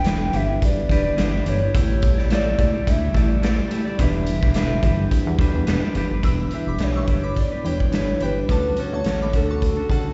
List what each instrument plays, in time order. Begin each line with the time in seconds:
Already playing: analog synth bass E1, ambient pad D3 G3 B3 E4, soft synth lead G5
0.04 clean electric guitar E3 D4 G4 B4, snare, closed hi-hat
0.32 analog synth bass G1, clean electric guitar E3 D4 G4 B4, soft synth lead E5, closed hi-hat
0.48 clean electric guitar D4 G4 B4
0.62 analog synth bass F#1, soft synth lead D5, kick, closed hi-hat
0.89 analog synth bass E1, clean electric guitar E3 D4 G4 B4, kick, closed hi-hat
1.04 clean electric guitar D4 G4 B4
1.17 analog synth bass G1, clean electric guitar E3 D4 G4 B4, snare, closed hi-hat
1.32 clean electric guitar D4 G4 B4
1.45 analog synth bass G1, clean electric guitar E3 D4 G4 B4, soft synth lead C#5, closed hi-hat
1.61 clean electric guitar D4 G4 B4
1.74 analog synth bass A1, ambient pad D3 G3 A3 E4, clean electric guitar A3 E4 G4, kick, closed hi-hat
2.02 kick, closed hi-hat
2.18 clean electric guitar E4 G4 D5, snare
2.30 clean electric guitar A3 E4 G4 D5, soft synth lead D5, snare, closed hi-hat
2.58 analog synth bass C#2, clean electric guitar A3 E4 G4 D5, kick, closed hi-hat
2.74 clean electric guitar E4 G4 D5
2.87 analog synth bass D2, soft synth lead E5, kick, closed hi-hat
3.13 analog synth bass A1, clean electric guitar A3 E4 G4 D5, kick, closed hi-hat
3.18 soft synth lead D5
3.42 clean electric guitar A3 E4 G4 D5, snare, closed hi-hat
3.58 clean electric guitar E4 G4 D5
3.70 clean electric guitar A3 E4 G4 D5, closed hi-hat
3.85 clean electric guitar E4 G4 D5
3.98 analog synth bass E1, clean electric guitar E3 D4 G4 B4, ambient pad G3 B3, kick, closed hi-hat
4.02 soft synth lead E5
4.26 closed hi-hat
4.41 clean electric guitar D4 G4 B4, kick, snare
4.54 clean electric guitar E3 D4 G4 B4, snare, closed hi-hat
4.83 analog synth bass G1, clean electric guitar E3 D4 G4 B4, kick, closed hi-hat
5.11 kick, closed hi-hat
5.27 analog synth bass E2
5.38 analog synth bass D2, clean electric guitar E3 D4 G4 B4, kick, closed hi-hat
5.55 analog synth bass E2
5.67 analog synth bass E1, clean electric guitar E3 D4 G4 B4, snare, closed hi-hat
5.82 clean electric guitar D4 G4 B4
5.95 analog synth bass F#1, clean electric guitar E3 D4 G4 B4, closed hi-hat
6.10 analog synth bass G1, clean electric guitar D4 G4 B4
6.22 analog synth bass E1, clean electric guitar E3 D4 G4 B4, ambient pad G3 B3 D4 E4, synth bell B5 E6, kick, closed hi-hat
6.51 clean electric guitar E3 D4 G4, soft synth lead E5, closed hi-hat
6.55 clean electric guitar B4
6.67 analog synth bass E1, synth bell B5 D6
6.78 analog synth bass B1, clean electric guitar E3 D4 G4 B4, snare, closed hi-hat
6.83 soft synth lead C#5
6.96 synth bell C#6 E6
7.08 analog synth bass G1, clean electric guitar E3 D4 G4 B4, kick, closed hi-hat
7.23 clean electric guitar D4 G4 B4, synth bell B5 D6
7.36 soft synth lead D5, kick, closed hi-hat
7.52 clean electric guitar D4 G4 B4
7.64 analog synth bass E1, clean electric guitar E3 D4 G4 B4, soft synth lead C#5, synth bell G5 B5, closed hi-hat
7.80 kick
7.92 analog synth bass G1, clean electric guitar E3 D4 G4 B4, soft synth lead C#5, snare, closed hi-hat
8.20 analog synth bass G1, clean electric guitar E3 D4 G4 B4, soft synth lead B4, synth bell G5 B5, closed hi-hat
8.47 analog synth bass D2, clean electric guitar D3 C#4 F#4 A4, ambient pad A3 C#4 F#4, soft synth lead B4, synth bell A5 D6, kick, closed hi-hat
8.76 clean electric guitar D3 C#4 F#4 A4, soft synth lead C#5, closed hi-hat
8.93 analog synth bass D2, synth bell A5 C#6
9.04 analog synth bass A1, clean electric guitar D3 C#4 F#4 A4, snare, closed hi-hat
9.22 synth bell B5 D6
9.33 analog synth bass D2, clean electric guitar D3 C#4 F#4 A4, soft synth lead A4, kick, closed hi-hat
9.49 clean electric guitar C#4 F#4 A4, synth bell A5 C#6
9.62 soft synth lead A4, kick, closed hi-hat
9.77 clean electric guitar C#4 F#4 A4
9.89 analog synth bass C#2, clean electric guitar D3 C#4 F#4 A4, synth bell F#5 A5, kick, closed hi-hat